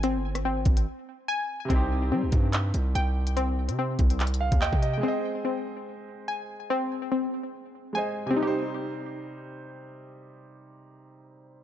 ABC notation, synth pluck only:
X:1
M:4/4
L:1/8
Q:1/4=144
K:Cm
V:1 name="Synth pluck"
[Ca]2 C4 a2 | C2 C4 g2 | C2 C4 g2 | C2 C4 a2 |
C2 C4 a2 | [CEG]8- | [CEG]8 |]